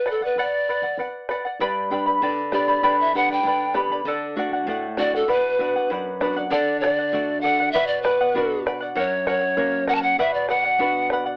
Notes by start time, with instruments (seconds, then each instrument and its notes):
Already playing: pan flute B4
0.06 charango B4 D5 F#5, bombo rim
0.11 pan flute A4
0.21 pan flute B4, charango D5 F#5, bombo low
0.36 charango B4 D5 F#5, bombo low
0.41 pan flute D5
0.69 charango B4 D5 F#5
0.82 charango D5 F#5, bombo low
0.98 charango B4 D5 F#5, bombo low
1.29 charango B4 D5 F#5, bombo rim
1.45 charango D5 F#5
1.60 nylon-string guitar G2, charango G4 B4 D5 G5 B5, bombo low
1.90 nylon-string guitar B3 D4 G4, charango B4 D5 G5 B5, bombo low
2.06 charango B4 D5 B5, bombo low
2.21 nylon-string guitar D3, charango B4 D5 G5 B5, bombo low
2.52 nylon-string guitar B3 D4 G4, charango B4 D5 G5 B5, pan flute D5, bombo rim
2.67 charango B4 D5 B5, bombo low
2.83 nylon-string guitar D3, charango G4 B4 D5 G5 B5, bombo low
3.00 pan flute E5
3.13 nylon-string guitar B3 D4 G4, charango B4 D5 G5 B5, pan flute F#5, bombo low
3.29 charango B4 D5 B5, pan flute G5, bombo low
3.43 nylon-string guitar D3, charango B4 D5 G5, bombo low
3.47 charango B5
3.74 nylon-string guitar B3 D4 G4, charango B4 D5 G5 B5, bombo rim
3.89 charango B4 D5 B5, bombo low
4.04 nylon-string guitar D3, charango A4 D5 F#5, bombo low
4.36 nylon-string guitar A3 D4 F#4, charango A4 D5 F#5
4.50 charango F#5, bombo low
4.54 charango D5
4.66 nylon-string guitar A2, charango A4 D5 F#5, bombo low
4.97 nylon-string guitar A3 D4 F#4, charango A4 D5 F#5, pan flute D5, bombo rim
5.13 pan flute A4, charango D5 F#5, bombo low
5.28 nylon-string guitar B2, charango B4 D5 F#5, pan flute B4, bombo low
5.59 nylon-string guitar B3 D4 F#4, charango B4 D5 F#5, bombo low
5.75 charango D5 F#5, bombo low
5.90 nylon-string guitar F#2, charango B4 D5 F#5, bombo low
6.21 nylon-string guitar B3 D4 F#4, charango B4 D5 F#5, bombo rim
6.36 charango D5 F#5, bombo low
6.50 nylon-string guitar D3, charango A4 D5 F#5, pan flute D5, bombo low
6.80 charango A4 D5 F#5, pan flute D5, bombo rim
6.99 charango D5 F#5
7.12 nylon-string guitar A3 D4 F#4, charango A4 D5 F#5, bombo low
7.41 charango A4 D5 F#5, pan flute F#5
7.60 charango D5 F#5
7.72 nylon-string guitar B2, charango B4 D5 F#5, pan flute E5, bombo low
7.87 pan flute D5
8.02 pan flute B4, charango B4 D5 F#5, bombo rim, bombo low
8.21 charango D5 F#5
8.34 nylon-string guitar B3 D4 F#4, charango B4 D5 F#5, bombo low
8.66 charango B4 D5 F#5, bombo rim
8.80 charango D5 F#5
8.95 nylon-string guitar F#2, charango A#4 C#5 F#5, pan flute C#5, bombo low
9.26 charango A#4 C#5 F#5, pan flute C#5, bombo rim, bombo low
9.40 charango C#5 F#5
9.57 nylon-string guitar A#3 C#4 F#4, charango A#4 C#5 F#5, bombo low
9.88 charango A#4 C#5 F#5, pan flute F#5, bombo rim
9.95 pan flute A5
10.02 charango C#5 F#5, pan flute F#5
10.18 nylon-string guitar B2, charango B4 D5 F#5, pan flute E5, bombo low
10.34 pan flute D5
10.49 charango B4 D5 F#5, pan flute F#5, bombo rim
10.64 charango D5 F#5
10.79 nylon-string guitar B3 D4 F#4, charango B4 D5 F#5, bombo low
11.10 charango B4 D5 F#5, bombo rim
11.26 charango D5 F#5